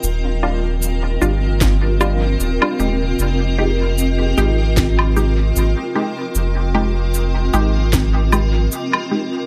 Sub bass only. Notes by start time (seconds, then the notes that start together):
0.03 D#1
1.22 G1
2.40 D#1
2.79 D#1
3.19 F1
4.38 G#1
5.56 G#1
6.35 F1
7.53 G#1